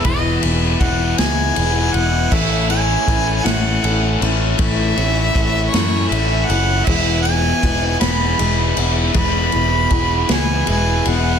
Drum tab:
CC |------|x-----|------|x-----|
RD |xxxxxx|-xxxxx|xxxxxx|-xxxxx|
SD |---o--|---o--|---o--|---o--|
BD |o-o---|o-o---|o-o---|o-o---|

CC |------|
RD |xxxxxx|
SD |---o--|
BD |o-o---|